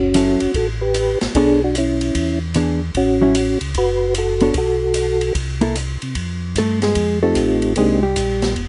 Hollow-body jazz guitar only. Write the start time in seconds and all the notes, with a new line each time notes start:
0.15 F#3 C#4 E4 A4
1.36 B3 D4 A4 C#5
2.56 E3 B3 D4 G#4
3.21 F#3 C#4 E4
4.41 B3 D4 A4 C#5
5.61 A#3 E4 A4
6.58 A3 A4
6.83 G#3 G#4
7.23 A3 A4
7.78 G#3 G#4
8.03 G3 G4